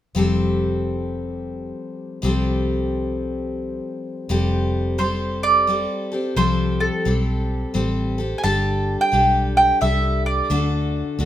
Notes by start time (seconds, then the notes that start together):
0.15 F1 F3 G3 C4 G4 A4
2.22 C2 F3 G3 C4 G4 A4
4.29 F1 F3 G3 C4 G4 A4
4.98 G3 C4 G4 A4 C5
5.43 D5
5.67 G3 C4 G4 A4
6.12 C4 G4 A4
6.36 C2 F3 G3 C4 G4 A4 C5
6.80 A4
7.05 B1 G3 C4 G4 A4
7.74 A1 G3 C4 G4 A4
8.18 C4 G4 A4
8.38 G#5
8.43 G1 G3 D4 G4 A4 A5
9.01 G5
9.12 B1 G3 D4 G4 A4
9.57 G5
9.81 C2 G3 D4 G4 A4 E5
10.26 D5
10.50 D2 D3 A3 D4 F#4 A4
11.19 D2 A3 D4 F#4 A4